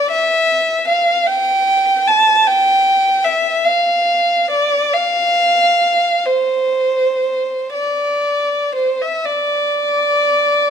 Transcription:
Already playing: D5
0.11 E5
0.88 F5
1.28 G5
2.07 A5
2.47 G5
3.24 E5
3.65 F5
4.51 D5
4.93 F5
6.27 C5
7.74 D5
8.75 C5
9.02 E5
9.25 D5

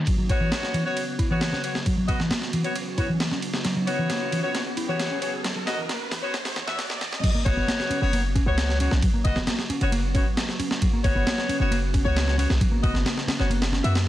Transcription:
0.07 C#3 F#3 B3 F#4, kick, ride, riser
0.18 F#3
0.29 B3 F#4 C#5, kick, ride
0.40 E3
0.51 A#3, snare, ride
0.63 snare
0.74 E3, ride
0.85 B3 F#4 C#5
0.97 ride
1.19 E4, kick, ride
1.30 E3 B3 F#4 C#5
1.41 snare, ride
1.52 C#4, snare
1.63 B3 F#4 C#5, ride
1.75 snare
1.86 F#3, kick, ride
1.97 F#3
2.08 B3 F#4 D#5, kick, ride
2.20 E3, snare
2.30 A#3, snare, ride
2.42 snare
2.53 E3, ride
2.64 B3 F#4 C#5, ride
2.76 ride
2.98 B3 E4 F#4 C#5, kick, ride
3.09 E3
3.20 snare, ride
3.31 C#4, snare
3.42 ride
3.54 snare
3.65 F#3, snare, ride
3.76 F#3
3.87 B3 F#4 C#5, ride
3.98 E3
4.10 A#3, snare, ride
4.32 E3, ride
4.43 B3 F#4 C#5
4.55 snare, ride
4.77 E4, ride
4.88 E3 B3 F#4 C#5
5.00 snare, ride
5.11 C#4
5.22 B3 F#4 C#5, ride
5.44 F#3, snare, ride
5.56 F#3
5.66 B3 F#4 D#5, snare, ride
5.78 E3
5.89 A#3, snare, ride
6.11 E3, snare, ride
6.22 B3 F#4 C#5
6.34 snare, ride
6.45 snare, ride
6.56 E3, snare
6.67 E3 B3 F#4 E5, snare, ride
6.79 snare, ride
6.90 A#3, snare
7.01 E3, snare, ride
7.12 C#4, snare
7.23 C#3 F#3 B3 F#4, kick, crash, ride
7.34 A#3
7.45 F#1 B3 F#4 C#5, kick, ride
7.57 F#1 B3
7.68 A#3, snare, ride
7.80 snare
7.90 C#4, ride
8.01 F#1 B3 F#4 C#5
8.13 A#3, ride
8.35 C#4, kick, ride
8.46 C#2 B3 F#4 C#5
8.58 snare, ride
8.69 snare
8.80 B3 C#4 F#4 C#5, ride
8.91 B1, snare
9.02 F#3, kick, ride
9.14 A#3
9.25 F#1 B3 F#4 D#5, kick, ride
9.36 F#1 B3, snare
9.47 A#3, snare, ride
9.59 snare
9.70 C#4, ride
9.81 F#1 B3 F#4 C#5, ride
9.92 A#3, ride
10.14 B3 C#4 F#4 C#5, kick, ride
10.37 snare, ride
10.49 snare
10.59 C#4, ride
10.71 snare
10.82 F#3, kick, ride
10.93 A#3
11.04 F#1 B3 F#4 C#5, kick, ride
11.15 F#1 B3
11.27 A#3, snare, ride
11.38 snare
11.49 C#4, ride
11.60 F#1 B3 F#4 C#5
11.71 A#3, ride
11.94 C#4, kick, ride
12.05 C#2 B3 F#4 C#5
12.17 snare, ride
12.28 snare
12.38 B3 C#4 F#4 C#5, ride
12.50 B1, snare
12.60 F#3, kick, ride
12.71 A#3
12.83 F#1 B3 F#4 D#5, kick, ride
12.93 F#1 B3, snare
13.05 A#3, snare, ride
13.18 snare
13.27 C#4, snare, ride
13.39 F#1 B3 F#4 C#5, snare
13.50 A#3, ride
13.62 snare, ride
13.72 C#4, snare
13.84 F#2 B3 F#4 E5, ride
13.95 snare, ride

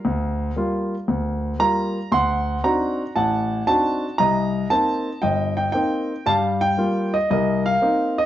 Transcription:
Already playing: A#4 F5
0.05 D2
0.56 G3 A#3 F4
1.08 D2
1.59 G3 A#3 F4 A#5
2.12 D2 F#5 C6
2.64 C4 D4 D#4 F#4 A#5
3.16 A1 F#5 A5
3.67 C4 D4 D#4 F#4 A5
4.18 C2 D#5 A#5
4.70 A#3 C4 D#4 A5
5.22 G1 D#5 G5
5.57 G5
5.72 A#3 C4 D#4 G5
6.26 G2 G3 F5 A5
6.61 G5
6.78 G3 A#3 F4
7.14 D#5
7.31 C2 A#4 D#5
7.66 F5
7.82 A#3 C4 D#4
8.18 D#5

